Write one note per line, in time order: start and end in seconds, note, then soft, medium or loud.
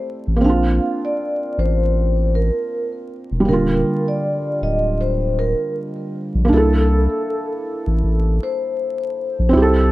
0.00 0.37 A3 medium
0.00 0.39 C4 medium
0.00 0.41 E4 medium
0.00 0.43 G4 medium
0.27 0.43 A1 medium
0.36 3.40 A#3 medium
0.41 0.80 A#1 loud
0.41 3.42 C4 medium
0.41 1.00 F5 medium
0.45 3.44 D4 medium
0.49 3.46 F4 medium
1.05 1.55 D5 medium
1.58 2.51 A1 medium
1.58 2.30 C5 medium
2.35 2.90 A#4 medium
3.31 3.47 E1 medium
3.40 6.44 G3 medium
3.45 3.84 D#1 loud
3.45 6.48 D3 medium
3.45 6.43 A#3 medium
3.45 4.04 A#4 medium
3.53 6.50 F4 medium
4.08 4.59 D5 medium
4.62 5.55 D1 medium
4.62 4.97 D#5 medium
5.01 5.38 C5 medium
5.39 5.72 A#4 medium
6.35 6.51 A#1 medium
6.45 9.48 A#3 medium
6.49 7.08 C2 medium
6.49 9.50 D4 medium
6.53 9.52 E4 medium
6.53 7.45 A4 medium
6.57 9.54 A4 medium
7.87 8.03 A1 medium
8.04 8.40 A1 medium
8.43 9.52 C5 medium
9.39 9.55 A#1 medium
9.49 9.92 C4 medium
9.53 9.92 C2 loud
9.53 9.92 E4 medium
9.57 9.92 G4 medium
9.62 9.92 A4 medium